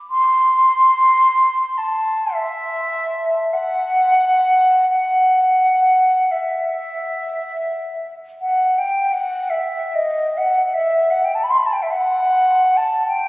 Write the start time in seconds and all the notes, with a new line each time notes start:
0.10 C6
1.78 A5
2.33 E5
3.53 F#5
4.89 F#5
6.31 E5
8.41 F#5
8.78 G5
9.13 F#5
9.50 E5
9.95 D#5
10.37 F#5
10.65 F#5
10.74 E5
11.10 F#5
11.24 G5
11.35 A5
11.43 B5
11.51 C6
11.58 B5
11.66 A5
11.73 G5
11.82 E5
11.91 F#5
12.77 A5
13.07 G5